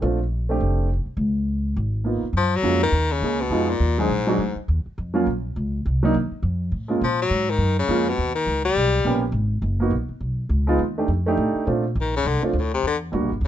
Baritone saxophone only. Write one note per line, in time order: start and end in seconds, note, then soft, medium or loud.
2.37 2.58 F3 loud
2.56 2.83 F#3 loud
2.83 3.14 D#3 loud
3.12 3.42 C#3 medium
3.41 3.71 B2 medium
3.70 4.01 A#2 medium
4.00 4.57 G#2 medium
7.04 7.19 F3 medium
7.22 7.52 F#3 loud
7.50 7.78 D#3 loud
7.79 8.10 C#3 medium
8.09 8.35 B2 medium
8.35 8.62 D#3 medium
8.65 9.19 G3 loud
12.01 12.15 D#3 medium
12.16 12.29 C#3 medium
12.27 12.44 D3 medium
12.45 12.60 F2 soft
12.59 12.73 A2 medium
12.74 12.84 C3 medium
12.87 12.97 D3 medium